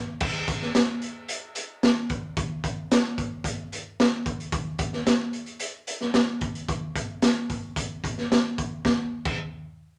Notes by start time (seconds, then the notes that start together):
0.20 kick, crash
0.48 kick, closed hi-hat
0.62 snare
0.75 snare, closed hi-hat
1.02 closed hi-hat
1.28 closed hi-hat
1.55 closed hi-hat
1.83 snare, closed hi-hat
2.09 kick, closed hi-hat
2.37 kick, closed hi-hat
2.64 kick, closed hi-hat
2.91 snare, closed hi-hat
3.18 kick, closed hi-hat
3.44 kick, closed hi-hat
3.72 closed hi-hat
4.00 snare, closed hi-hat
4.26 kick, closed hi-hat
4.40 closed hi-hat
4.52 kick, closed hi-hat
4.79 kick, closed hi-hat
4.93 snare
5.06 snare, closed hi-hat
5.33 closed hi-hat
5.46 closed hi-hat
5.59 closed hi-hat
5.87 closed hi-hat
6.01 snare
6.14 snare, closed hi-hat
6.41 kick, closed hi-hat
6.55 closed hi-hat
6.68 kick, closed hi-hat
6.96 kick, closed hi-hat
7.22 snare, closed hi-hat
7.50 kick, closed hi-hat
7.76 kick, closed hi-hat
8.04 kick, closed hi-hat
8.18 snare
8.32 snare, closed hi-hat
8.58 kick, closed hi-hat
8.85 kick, snare
9.25 kick, crash